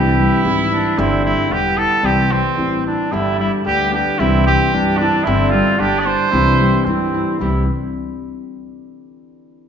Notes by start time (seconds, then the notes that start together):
Already playing: C2 C3 E3 G3 A3 C4 D4 E4 G4
0.19 G3
0.44 G#1 G3 C4 E4 G4
0.72 D4 E4
0.97 G1 G2 D3 G3 C4 D4 E4 G4
1.24 G3 E4
1.49 E1 G3 B3 E4 G4
1.77 E4 A4
2.03 C2 C3 E3 G3 C4 E4 G4
2.31 G3 C4
2.56 A1 G3 C4 E4 G4
2.86 D4 E4
3.11 G1 G2 D3 G3 B3 D4 E4 G4
3.39 G3 E4
3.64 D2 G3 B3 D4 G4
3.92 G3 B3 D4 G4
4.19 C2 C3 E3 G3 C4 E4 G4
4.47 G3 G4
4.74 G2 G3 C4 D4 E4 G4
4.97 D4 E4 G4
5.02 C4
5.24 G1 G2 D3 G3 C4 D4 E4 G4
5.50 G3 F4
5.78 G1 G3 B3 D4 G4
6.00 D5
6.06 D4 C5
6.31 C2 C3 E3 G3 C4 E4 G4
6.60 G3
6.85 G2 G3 C4 E4
6.90 G4
7.14 E4
7.39 C2 C3 E3 G3 C4 E4 G4
7.44 E4